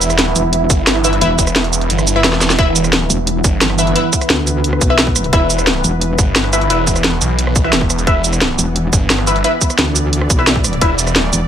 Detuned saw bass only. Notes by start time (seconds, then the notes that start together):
Already playing: E1
0.70 G1
1.39 E1
1.90 G1
2.24 E1
2.59 E1
3.44 G1
5.33 E1
6.19 G1
6.70 E1
7.21 B1
7.73 E1
8.07 E1
8.93 G1
10.81 E1